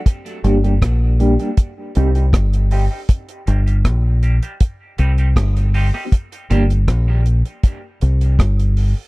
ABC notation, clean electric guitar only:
X:1
M:4/4
L:1/16
Q:1/4=79
K:Gm
V:1 name="Clean electric guitar"
z2 [G,B,DG] [G,B,DG] z2 [G,B,DG] [G,B,DG] z2 [G,CEG] [G,CEG] z2 [G,CEG] [G,CEG] | z2 [G,B,DG] [G,B,DG] z2 [G,B,DG] [G,B,DG] z2 [G,CEG] [G,CEG] z2 [G,CEG] [G,CEG] | z2 [G,B,DG] z12 z |]